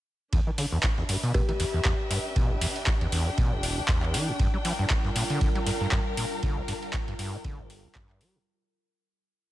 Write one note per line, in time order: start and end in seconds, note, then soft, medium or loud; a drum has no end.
0.33 0.41 E2 loud
0.33 8.46 D4 medium
0.33 kick loud
0.33 ride medium
0.47 0.51 E3 medium
0.58 0.66 D3 medium
0.58 open hi-hat loud
0.58 ride medium
0.63 4.39 B4 medium
0.72 0.78 E2 loud
0.72 4.39 E5 medium
0.83 kick loud
0.83 snare loud
0.83 clap loud
0.83 ride medium
0.98 1.04 E2 medium
0.98 snare medium
1.09 1.17 G2 medium
1.09 open hi-hat loud
1.09 ride medium
1.23 1.32 B2 loud
1.23 ride soft
1.34 1.44 G4 medium
1.34 kick loud
1.34 ride medium
1.49 1.52 E3 medium
1.49 1.56 G4 medium
1.49 ride soft
1.60 1.64 E2 loud
1.60 open hi-hat medium
1.60 ride medium
1.74 1.80 E2 medium
1.74 8.46 G5 medium
1.85 1.93 E2 loud
1.85 kick loud
1.85 snare loud
1.85 clap loud
1.85 ride medium
2.11 2.18 G2 medium
2.11 open hi-hat loud
2.11 ride medium
2.36 2.52 B2 loud
2.36 kick loud
2.36 ride medium
2.50 2.56 E1 medium
2.61 2.66 E2 loud
2.61 open hi-hat loud
2.61 ride medium
2.76 ride soft
2.87 kick loud
2.87 snare loud
2.87 clap loud
2.87 ride medium
3.01 3.07 E2 loud
3.01 ride soft
3.12 3.28 E2 loud
3.12 open hi-hat loud
3.12 ride medium
3.27 3.30 F#2 medium
3.38 3.54 B2 loud
3.38 kick loud
3.38 ride medium
3.52 3.79 E1 medium
3.63 open hi-hat loud
3.63 ride medium
3.77 3.81 E2 loud
3.88 4.16 E2 loud
3.88 kick loud
3.88 snare loud
3.88 clap loud
3.88 ride medium
4.03 clap soft
4.14 4.30 E3 medium
4.14 snare loud
4.14 open hi-hat loud
4.14 ride medium
4.28 4.32 F#2 medium
4.39 4.47 G2 loud
4.39 8.42 G3 medium
4.39 8.42 F4 medium
4.39 8.42 A#4 medium
4.39 kick loud
4.39 ride medium
4.54 4.57 G3 medium
4.59 8.46 F5 medium
4.65 4.73 F3 medium
4.65 8.46 A#4 medium
4.65 open hi-hat loud
4.65 ride medium
4.79 4.85 G2 loud
4.90 kick loud
4.90 snare loud
4.90 clap loud
4.90 ride medium
5.05 5.11 G2 medium
5.05 snare medium
5.16 5.24 A#2 medium
5.16 open hi-hat loud
5.16 ride medium
5.30 5.39 D3 loud
5.30 ride soft
5.41 kick loud
5.41 ride medium
5.55 5.59 G3 medium
5.55 ride soft
5.66 5.71 G2 loud
5.66 open hi-hat loud
5.66 ride medium
5.81 5.87 G2 loud
5.92 6.00 G2 loud
5.92 kick loud
5.92 snare loud
5.92 clap loud
5.92 ride medium
6.17 6.25 A#2 medium
6.17 open hi-hat loud
6.17 ride medium
6.43 6.59 D3 loud
6.43 kick loud
6.43 ride medium
6.57 6.63 G1 medium
6.68 6.73 G2 loud
6.68 open hi-hat loud
6.68 ride medium
6.83 ride soft
6.93 kick loud
6.93 snare loud
6.93 clap loud
6.93 ride medium
7.08 7.14 G2 loud
7.08 ride soft
7.19 7.35 G2 loud
7.19 open hi-hat loud
7.19 ride medium
7.33 7.37 A2 medium
7.44 7.60 D3 loud
7.44 kick loud
7.44 ride medium
7.59 7.86 G1 medium
7.70 open hi-hat loud
7.70 ride medium
7.84 7.88 G2 loud
7.95 8.22 G2 loud
7.95 kick loud
7.95 snare loud
7.95 clap loud
7.95 ride medium
8.09 clap soft
8.21 8.37 G3 medium
8.21 open hi-hat loud
8.21 ride medium
8.35 8.39 A2 medium